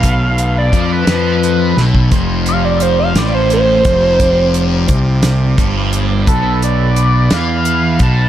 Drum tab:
HH |x-x-x-x-x---|x-x-x-x-x-x-|x-x-x-x-x-x-|x-x-x-x-x-x-|
SD |------o---o-|------o-----|------o-----|------o-----|
BD |o---o------o|o---------o-|o---o---o---|o---------o-|